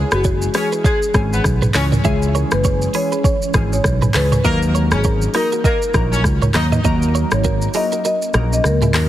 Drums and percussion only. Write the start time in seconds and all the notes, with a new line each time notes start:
0.11 cross-stick, shaker
0.24 kick, shaker
0.42 shaker
0.54 cross-stick, open hi-hat
0.72 shaker
0.84 kick, shaker
1.02 shaker
1.14 kick, cross-stick, shaker
1.33 shaker
1.44 kick, cross-stick, shaker
1.62 mid tom, shaker
1.74 cross-stick, clap, open hi-hat, shaker
1.92 mid tom, shaker
2.05 kick, shaker
2.22 shaker
2.35 shaker
2.51 cross-stick, shaker
2.64 kick, shaker
2.82 shaker
2.94 open hi-hat
3.12 shaker
3.24 kick, shaker
3.42 shaker
3.54 kick, cross-stick, shaker
3.73 shaker
3.84 kick, cross-stick, shaker
4.02 mid tom, shaker
4.14 cross-stick, clap, open hi-hat, shaker
4.32 mid tom, shaker
4.44 kick, shaker
4.62 shaker
4.75 shaker
4.91 cross-stick, shaker
5.04 kick, shaker
5.22 shaker
5.34 cross-stick, open hi-hat
5.52 shaker
5.64 kick, shaker
5.82 shaker
5.94 kick, cross-stick, shaker
6.13 shaker
6.24 kick, cross-stick, shaker
6.42 mid tom, shaker
6.54 cross-stick, clap, open hi-hat, shaker
6.72 mid tom, shaker
6.84 kick, shaker
7.02 shaker
7.15 shaker
7.31 cross-stick, shaker
7.44 kick, shaker
7.62 shaker
7.74 open hi-hat, shaker
7.92 shaker
8.05 shaker
8.22 shaker
8.34 cross-stick, shaker
8.53 shaker
8.64 cross-stick, shaker
8.82 mid tom, shaker
8.94 cross-stick, clap, open hi-hat, shaker